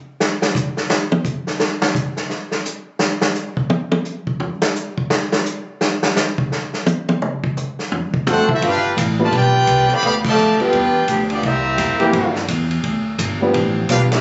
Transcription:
0.20 snare
0.42 snare
0.55 kick, hi-hat pedal
0.77 snare
0.90 snare
1.12 high tom
1.25 kick, hi-hat pedal
1.47 snare
1.60 snare
1.82 snare
1.95 kick, hi-hat pedal
2.17 snare
2.30 snare
2.51 snare
2.65 hi-hat pedal
2.99 snare
3.21 snare
3.35 hi-hat pedal
3.57 kick
3.70 high tom
3.92 high tom
4.05 hi-hat pedal
4.27 kick
4.40 floor tom
4.62 snare
4.75 hi-hat pedal
4.98 kick
5.10 snare
5.32 snare
5.46 hi-hat pedal
5.81 snare
6.03 snare
6.16 snare, hi-hat pedal
6.38 kick
6.52 snare
6.73 snare
6.86 hi-hat pedal, high tom
7.09 high tom
7.22 mid tom
7.44 kick
7.57 hi-hat pedal, mid tom
7.79 snare
7.92 floor tom
8.14 kick
8.27 A3 C4 D4 F#4 A4 C5 F#5, floor tom, hi-hat pedal
8.49 C4 E4 F#4 A4 E5, kick
8.61 G1 B3 D4 F4, kick, ride
8.66 D4 G4 B4 F5
8.97 A1, kick, hi-hat pedal, ride
9.19 G3 A3 B3 D4 F4 B4
9.23 F4 B4 D5 A5
9.31 B1 B3 D4 G4, kick, ride
9.37 F4 B4 D5 G5
9.67 C2, kick, hi-hat pedal, ride
9.88 D3 F3 B3, muted upright bass stroke, ride
9.93 G4 D5 F5 B5
10.01 D2 D3 F3 B3 G4 F5, kick, ride
10.06 D5 B5
10.24 D3 F3 A3 G4 F5 A5, kick, crash
10.28 D5
10.37 F2, hi-hat pedal
10.60 G3 B3 D4 F4 G4 B4 D5 G5, muted upright bass stroke, ride
10.73 E2, kick, ride
11.08 D2 F3 B3 D4 G4, kick, hi-hat pedal, ride
11.29 F3 B3 D4 F4 G4 D5, ride
11.41 C2 G3 A#3 C4 E4 G4 A#4 E5, kick, ride
11.78 F2, kick, hi-hat pedal, ride
11.99 E3 G3 A#3 C4 E4 G4 A#4, ride
12.13 G2, kick, ride
12.35 snare
12.48 E2, kick, hi-hat pedal, ride
12.71 ride
12.83 D2, kick, ride
13.18 G1, kick, hi-hat pedal, ride
13.40 F3 G3 B3 D4 F4 G4 B4
13.54 A1, kick, ride
13.89 B1 G3 B3 D4 F4 G4 B4 F5, kick, hi-hat pedal, ride
14.12 G3 A#3 C4 E4 G4 A#4 E5, snare, ride

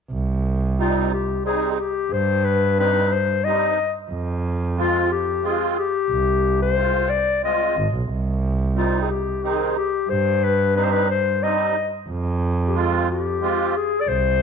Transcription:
0.11 C2
0.78 G3 C4 D#4 F4
1.13 G4
1.44 G3 C4 D#4 G#4
1.72 G#4
1.79 G4
2.11 G2 C5
2.45 B4
2.78 G3 C4 D#4 B4
3.13 C5
3.44 G3 C4 D#4 D#5
4.11 F2
4.77 G#3 C4 F4
5.11 G4
5.42 G#3 C4 F4 G#4
5.70 G#4
5.79 G4
6.11 C2
6.62 C5
6.75 G#3 C4 F4
7.10 D5
7.43 G#3 C4 F4 D#5
7.77 G#1
7.94 B1
8.10 C2
8.75 G3 C4 D#4 F4
9.02 G#4
9.10 G4
9.42 D#3 C4 D#4 G#4
9.77 G4
10.09 G2 C5
10.44 B4
10.75 G3 C4 D#4 B4
10.84 C5
10.92 B4
11.10 C5
11.41 G3 C4 D#4 D#5
12.09 F2
12.68 G4
12.74 G#3 C4 F4
13.11 G4
13.41 G#3 C4 F4
13.77 G#4
14.01 D5
14.08 C2 C5

